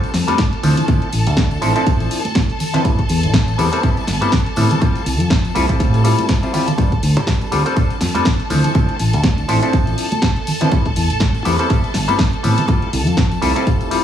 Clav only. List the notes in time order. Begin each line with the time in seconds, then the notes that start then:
Already playing: G3 C4 D4 F4 A4
0.28 G3 C4 D4 F4 A4
0.63 F3 C4 D4 E4 A4
0.88 F3 C4 D4 E4 A4
1.62 F3 C4 D4 E4 A4
1.75 F3 C4 D4 E4 A4
2.74 F3 C4 D4 E4 B4
2.84 G3 B3 C4 E4 A4
3.58 G3 B3 C4 E4 A4
3.72 G3 B3 C4 E4 A4
3.83 G3 B3 C4 E4 A4
4.21 G3 B3 C4 E4 A4
4.57 G3 B3 C4 E4 A4
4.81 G3 C4 E4 F4 A4
5.55 G3 C4 E4 F4 A4
5.69 G3 C4 E4 F4 A4
6.04 G3 C4 E4 F4 A4
6.43 G3 C4 E4 F4 C5
6.53 G3 C4 E4 F4 G4
6.78 G3 C4 D4 F4 A4
7.52 G3 C4 D4 F4 A4
7.66 G3 C4 D4 F4 A4
7.76 G3 C4 D4 F4 A4
8.15 G3 C4 D4 F4 A4
8.50 F3 C4 D4 E4 A4
8.75 F3 C4 D4 E4 A4
9.48 F3 C4 D4 E4 A4
9.62 F3 C4 D4 E4 A4
10.61 F3 C4 D4 E4 B4
10.72 G3 B3 C4 A4
11.45 G3 B3 C4 E4 A4
11.59 G3 B3 C4 E4 A4
11.70 G3 B3 C4 E4 A4
12.08 G3 B3 C4 E4 A4
12.43 G3 B3 C4 E4 A4
12.68 G3 C4 E4 F4 A4
13.41 G3 C4 E4 F4 A4
13.55 G3 C4 E4 F4 A4
13.91 G3 C4 E4 F4 A4